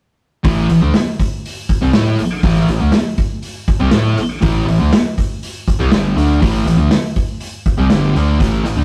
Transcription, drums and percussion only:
0, 0, Header, 1, 2, 480
1, 0, Start_track
1, 0, Tempo, 497100
1, 434, Time_signature, 4, 2, 24, 8
1, 8540, End_track
2, 0, Start_track
2, 0, Title_t, "Drums"
2, 429, Note_on_c, 9, 46, 77
2, 431, Note_on_c, 9, 36, 113
2, 526, Note_off_c, 9, 46, 0
2, 527, Note_off_c, 9, 36, 0
2, 669, Note_on_c, 9, 46, 55
2, 766, Note_off_c, 9, 46, 0
2, 907, Note_on_c, 9, 38, 106
2, 911, Note_on_c, 9, 46, 78
2, 1004, Note_off_c, 9, 38, 0
2, 1008, Note_off_c, 9, 46, 0
2, 1154, Note_on_c, 9, 36, 79
2, 1158, Note_on_c, 9, 46, 54
2, 1251, Note_off_c, 9, 36, 0
2, 1254, Note_off_c, 9, 46, 0
2, 1404, Note_on_c, 9, 46, 77
2, 1501, Note_off_c, 9, 46, 0
2, 1634, Note_on_c, 9, 36, 83
2, 1636, Note_on_c, 9, 46, 55
2, 1731, Note_off_c, 9, 36, 0
2, 1733, Note_off_c, 9, 46, 0
2, 1867, Note_on_c, 9, 38, 106
2, 1871, Note_on_c, 9, 46, 76
2, 1964, Note_off_c, 9, 38, 0
2, 1968, Note_off_c, 9, 46, 0
2, 2113, Note_on_c, 9, 46, 55
2, 2210, Note_off_c, 9, 46, 0
2, 2349, Note_on_c, 9, 36, 112
2, 2352, Note_on_c, 9, 46, 80
2, 2446, Note_off_c, 9, 36, 0
2, 2449, Note_off_c, 9, 46, 0
2, 2466, Note_on_c, 9, 38, 32
2, 2562, Note_off_c, 9, 38, 0
2, 2589, Note_on_c, 9, 46, 58
2, 2686, Note_off_c, 9, 46, 0
2, 2821, Note_on_c, 9, 38, 108
2, 2825, Note_on_c, 9, 46, 71
2, 2917, Note_off_c, 9, 38, 0
2, 2921, Note_off_c, 9, 46, 0
2, 3067, Note_on_c, 9, 46, 53
2, 3071, Note_on_c, 9, 36, 82
2, 3163, Note_off_c, 9, 46, 0
2, 3167, Note_off_c, 9, 36, 0
2, 3307, Note_on_c, 9, 46, 73
2, 3404, Note_off_c, 9, 46, 0
2, 3552, Note_on_c, 9, 36, 85
2, 3554, Note_on_c, 9, 46, 55
2, 3649, Note_off_c, 9, 36, 0
2, 3650, Note_off_c, 9, 46, 0
2, 3778, Note_on_c, 9, 38, 112
2, 3782, Note_on_c, 9, 46, 68
2, 3875, Note_off_c, 9, 38, 0
2, 3879, Note_off_c, 9, 46, 0
2, 4031, Note_on_c, 9, 46, 53
2, 4128, Note_off_c, 9, 46, 0
2, 4267, Note_on_c, 9, 46, 72
2, 4274, Note_on_c, 9, 36, 112
2, 4363, Note_off_c, 9, 46, 0
2, 4371, Note_off_c, 9, 36, 0
2, 4522, Note_on_c, 9, 46, 54
2, 4618, Note_off_c, 9, 46, 0
2, 4757, Note_on_c, 9, 38, 108
2, 4761, Note_on_c, 9, 46, 73
2, 4854, Note_off_c, 9, 38, 0
2, 4858, Note_off_c, 9, 46, 0
2, 5001, Note_on_c, 9, 36, 80
2, 5005, Note_on_c, 9, 46, 56
2, 5097, Note_off_c, 9, 36, 0
2, 5101, Note_off_c, 9, 46, 0
2, 5241, Note_on_c, 9, 46, 76
2, 5338, Note_off_c, 9, 46, 0
2, 5481, Note_on_c, 9, 36, 81
2, 5486, Note_on_c, 9, 46, 57
2, 5577, Note_off_c, 9, 36, 0
2, 5583, Note_off_c, 9, 46, 0
2, 5713, Note_on_c, 9, 38, 99
2, 5716, Note_on_c, 9, 46, 72
2, 5809, Note_off_c, 9, 38, 0
2, 5813, Note_off_c, 9, 46, 0
2, 5965, Note_on_c, 9, 46, 56
2, 6062, Note_off_c, 9, 46, 0
2, 6201, Note_on_c, 9, 36, 105
2, 6202, Note_on_c, 9, 46, 83
2, 6297, Note_off_c, 9, 36, 0
2, 6298, Note_off_c, 9, 46, 0
2, 6442, Note_on_c, 9, 46, 59
2, 6539, Note_off_c, 9, 46, 0
2, 6672, Note_on_c, 9, 38, 105
2, 6676, Note_on_c, 9, 46, 77
2, 6768, Note_off_c, 9, 38, 0
2, 6772, Note_off_c, 9, 46, 0
2, 6911, Note_on_c, 9, 46, 52
2, 6916, Note_on_c, 9, 36, 75
2, 7008, Note_off_c, 9, 46, 0
2, 7013, Note_off_c, 9, 36, 0
2, 7150, Note_on_c, 9, 46, 73
2, 7246, Note_off_c, 9, 46, 0
2, 7394, Note_on_c, 9, 46, 51
2, 7395, Note_on_c, 9, 36, 81
2, 7490, Note_off_c, 9, 46, 0
2, 7491, Note_off_c, 9, 36, 0
2, 7626, Note_on_c, 9, 38, 104
2, 7630, Note_on_c, 9, 46, 66
2, 7723, Note_off_c, 9, 38, 0
2, 7727, Note_off_c, 9, 46, 0
2, 7878, Note_on_c, 9, 46, 53
2, 7975, Note_off_c, 9, 46, 0
2, 8113, Note_on_c, 9, 46, 78
2, 8114, Note_on_c, 9, 36, 108
2, 8210, Note_off_c, 9, 36, 0
2, 8210, Note_off_c, 9, 46, 0
2, 8356, Note_on_c, 9, 46, 55
2, 8453, Note_off_c, 9, 46, 0
2, 8540, End_track
0, 0, End_of_file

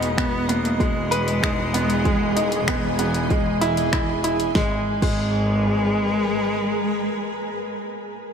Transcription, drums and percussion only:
0, 0, Header, 1, 2, 480
1, 0, Start_track
1, 0, Key_signature, 5, "minor"
1, 0, Tempo, 625000
1, 1577, Time_signature, 4, 2, 24, 8
1, 6399, End_track
2, 0, Start_track
2, 0, Title_t, "Drums"
2, 19, Note_on_c, 9, 42, 41
2, 96, Note_off_c, 9, 42, 0
2, 137, Note_on_c, 9, 36, 97
2, 140, Note_on_c, 9, 26, 100
2, 140, Note_on_c, 9, 42, 31
2, 214, Note_off_c, 9, 36, 0
2, 217, Note_off_c, 9, 26, 0
2, 217, Note_off_c, 9, 42, 0
2, 378, Note_on_c, 9, 42, 68
2, 455, Note_off_c, 9, 42, 0
2, 500, Note_on_c, 9, 42, 39
2, 576, Note_off_c, 9, 42, 0
2, 617, Note_on_c, 9, 36, 99
2, 619, Note_on_c, 9, 42, 28
2, 694, Note_off_c, 9, 36, 0
2, 696, Note_off_c, 9, 42, 0
2, 859, Note_on_c, 9, 42, 68
2, 936, Note_off_c, 9, 42, 0
2, 981, Note_on_c, 9, 42, 42
2, 1058, Note_off_c, 9, 42, 0
2, 1097, Note_on_c, 9, 36, 99
2, 1103, Note_on_c, 9, 26, 91
2, 1103, Note_on_c, 9, 42, 29
2, 1174, Note_off_c, 9, 36, 0
2, 1179, Note_off_c, 9, 26, 0
2, 1179, Note_off_c, 9, 42, 0
2, 1339, Note_on_c, 9, 42, 79
2, 1416, Note_off_c, 9, 42, 0
2, 1457, Note_on_c, 9, 42, 44
2, 1534, Note_off_c, 9, 42, 0
2, 1577, Note_on_c, 9, 36, 100
2, 1577, Note_on_c, 9, 42, 32
2, 1654, Note_off_c, 9, 36, 0
2, 1654, Note_off_c, 9, 42, 0
2, 1817, Note_on_c, 9, 42, 72
2, 1894, Note_off_c, 9, 42, 0
2, 1935, Note_on_c, 9, 42, 43
2, 2012, Note_off_c, 9, 42, 0
2, 2057, Note_on_c, 9, 26, 105
2, 2057, Note_on_c, 9, 36, 101
2, 2057, Note_on_c, 9, 42, 31
2, 2134, Note_off_c, 9, 26, 0
2, 2134, Note_off_c, 9, 36, 0
2, 2134, Note_off_c, 9, 42, 0
2, 2295, Note_on_c, 9, 42, 79
2, 2372, Note_off_c, 9, 42, 0
2, 2415, Note_on_c, 9, 42, 41
2, 2492, Note_off_c, 9, 42, 0
2, 2537, Note_on_c, 9, 36, 111
2, 2538, Note_on_c, 9, 42, 30
2, 2614, Note_off_c, 9, 36, 0
2, 2615, Note_off_c, 9, 42, 0
2, 2777, Note_on_c, 9, 42, 71
2, 2853, Note_off_c, 9, 42, 0
2, 2898, Note_on_c, 9, 42, 44
2, 2975, Note_off_c, 9, 42, 0
2, 3017, Note_on_c, 9, 26, 93
2, 3017, Note_on_c, 9, 36, 100
2, 3017, Note_on_c, 9, 42, 30
2, 3094, Note_off_c, 9, 26, 0
2, 3094, Note_off_c, 9, 36, 0
2, 3094, Note_off_c, 9, 42, 0
2, 3257, Note_on_c, 9, 42, 75
2, 3334, Note_off_c, 9, 42, 0
2, 3377, Note_on_c, 9, 42, 44
2, 3453, Note_off_c, 9, 42, 0
2, 3495, Note_on_c, 9, 38, 89
2, 3497, Note_on_c, 9, 36, 113
2, 3572, Note_off_c, 9, 38, 0
2, 3574, Note_off_c, 9, 36, 0
2, 3858, Note_on_c, 9, 36, 110
2, 3858, Note_on_c, 9, 49, 83
2, 3935, Note_off_c, 9, 36, 0
2, 3935, Note_off_c, 9, 49, 0
2, 6399, End_track
0, 0, End_of_file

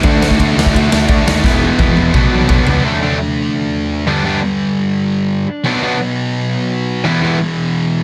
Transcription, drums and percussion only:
0, 0, Header, 1, 2, 480
1, 0, Start_track
1, 0, Tempo, 350672
1, 63, Time_signature, 4, 2, 24, 8
1, 10997, End_track
2, 0, Start_track
2, 0, Title_t, "Drums"
2, 43, Note_on_c, 9, 51, 89
2, 56, Note_on_c, 9, 36, 126
2, 180, Note_off_c, 9, 51, 0
2, 193, Note_off_c, 9, 36, 0
2, 308, Note_on_c, 9, 38, 111
2, 418, Note_on_c, 9, 36, 95
2, 445, Note_off_c, 9, 38, 0
2, 541, Note_off_c, 9, 36, 0
2, 541, Note_on_c, 9, 36, 104
2, 543, Note_on_c, 9, 51, 85
2, 678, Note_off_c, 9, 36, 0
2, 680, Note_off_c, 9, 51, 0
2, 808, Note_on_c, 9, 38, 113
2, 904, Note_on_c, 9, 36, 101
2, 945, Note_off_c, 9, 38, 0
2, 1022, Note_off_c, 9, 36, 0
2, 1022, Note_on_c, 9, 36, 107
2, 1039, Note_on_c, 9, 51, 83
2, 1159, Note_off_c, 9, 36, 0
2, 1176, Note_off_c, 9, 51, 0
2, 1264, Note_on_c, 9, 38, 125
2, 1401, Note_off_c, 9, 38, 0
2, 1482, Note_on_c, 9, 51, 77
2, 1491, Note_on_c, 9, 36, 116
2, 1619, Note_off_c, 9, 51, 0
2, 1628, Note_off_c, 9, 36, 0
2, 1748, Note_on_c, 9, 38, 120
2, 1885, Note_off_c, 9, 38, 0
2, 1969, Note_on_c, 9, 36, 117
2, 1975, Note_on_c, 9, 38, 69
2, 2106, Note_off_c, 9, 36, 0
2, 2112, Note_off_c, 9, 38, 0
2, 2446, Note_on_c, 9, 48, 78
2, 2452, Note_on_c, 9, 36, 121
2, 2583, Note_off_c, 9, 48, 0
2, 2589, Note_off_c, 9, 36, 0
2, 2694, Note_on_c, 9, 48, 78
2, 2831, Note_off_c, 9, 48, 0
2, 2931, Note_on_c, 9, 36, 116
2, 2931, Note_on_c, 9, 47, 102
2, 3068, Note_off_c, 9, 36, 0
2, 3068, Note_off_c, 9, 47, 0
2, 3408, Note_on_c, 9, 43, 109
2, 3414, Note_on_c, 9, 36, 117
2, 3545, Note_off_c, 9, 43, 0
2, 3551, Note_off_c, 9, 36, 0
2, 3649, Note_on_c, 9, 43, 97
2, 3786, Note_off_c, 9, 43, 0
2, 10997, End_track
0, 0, End_of_file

